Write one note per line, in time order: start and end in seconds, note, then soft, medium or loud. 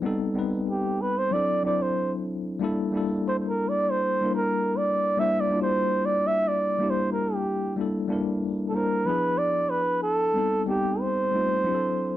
0.02 0.32 G3 medium
0.02 0.32 B3 medium
0.02 0.33 C4 medium
0.02 0.33 D#4 medium
0.06 0.34 A4 medium
0.34 1.31 G3 medium
0.34 1.32 B3 medium
0.34 1.31 C4 medium
0.34 1.33 D#4 medium
0.39 1.34 B4 medium
0.70 1.03 G4 medium
1.01 1.20 B4 medium
1.18 1.34 C5 medium
1.31 1.61 F#3 medium
1.31 1.61 C4 medium
1.31 1.62 D4 medium
1.31 1.62 E4 medium
1.31 1.64 D5 loud
1.35 1.63 A4 medium
1.63 2.52 F#3 medium
1.63 2.52 C4 medium
1.63 2.53 D4 medium
1.63 2.53 E4 medium
1.63 1.84 D5 medium
1.67 2.54 C5 medium
1.82 2.14 C5 medium
2.60 2.90 G3 loud
2.60 2.90 A#3 medium
2.60 2.91 D4 medium
2.60 2.91 E4 medium
2.64 2.92 A4 loud
2.92 4.10 G3 medium
2.92 4.11 A#3 medium
2.92 4.11 D4 medium
2.92 4.12 E4 medium
2.97 4.13 A4 medium
3.28 3.37 C5 medium
3.49 3.70 A#4 medium
3.69 3.92 D5 medium
3.91 4.33 C5 loud
4.21 5.10 G3 medium
4.21 5.10 A#3 medium
4.21 5.11 D4 medium
4.21 5.11 E4 medium
4.26 5.12 A#4 medium
4.35 4.78 A#4 medium
4.77 5.21 D5 medium
5.17 5.47 G3 medium
5.17 5.48 A#3 medium
5.17 5.48 D4 medium
5.17 5.49 E4 medium
5.17 5.42 E5 loud
5.21 5.49 C5 medium
5.40 5.61 D5 loud
5.50 6.68 G3 medium
5.50 6.69 A#3 medium
5.50 6.69 D4 medium
5.50 6.70 E4 medium
5.54 5.60 F4 medium
5.61 6.74 G4 medium
5.61 6.07 C5 loud
6.05 6.29 D5 loud
6.27 6.49 E5 loud
6.48 6.92 D5 loud
6.79 7.68 G3 medium
6.79 7.68 A#3 medium
6.79 7.69 D4 medium
6.79 7.70 E4 medium
6.84 7.70 G4 medium
6.90 7.11 C5 medium
7.12 7.36 A#4 medium
7.34 7.77 G4 medium
7.76 8.06 G3 medium
7.76 8.07 A#3 medium
7.76 8.07 D4 medium
7.76 8.08 E4 medium
7.81 8.08 A4 medium
8.08 8.67 G3 medium
8.08 8.68 A#3 medium
8.08 8.68 D4 medium
8.08 8.69 E4 medium
8.12 8.70 A#4 medium
8.69 9.05 G3 medium
8.69 8.77 A4 medium
8.74 9.06 A#3 medium
8.74 9.06 D4 medium
8.74 9.07 E4 medium
8.74 9.08 A#4 medium
8.74 9.08 C5 medium
9.05 10.23 F3 medium
9.05 10.24 B3 medium
9.05 10.24 D4 medium
9.05 10.25 E4 medium
9.05 9.40 B4 loud
9.09 10.25 G#4 medium
9.38 9.71 D5 loud
9.70 10.02 B4 medium
10.03 10.63 A4 loud
10.34 10.64 G3 medium
10.34 10.64 B3 medium
10.34 10.65 C4 medium
10.34 10.65 D#4 medium
10.38 10.66 A4 medium
10.66 11.25 G3 medium
10.66 11.26 B3 medium
10.66 11.27 C4 medium
10.66 11.27 D#4 medium
10.66 11.02 G4 medium
10.71 11.28 G4 medium
11.00 12.17 C5 medium
11.32 11.64 G3 medium
11.32 11.64 A3 medium
11.32 11.63 C4 medium
11.32 11.66 D#4 medium
11.36 11.66 F4 medium
11.64 12.17 F#3 medium
11.64 12.17 C4 medium
11.64 12.17 D4 medium
11.64 12.17 E4 medium
11.68 11.73 G4 medium
11.74 12.17 A4 medium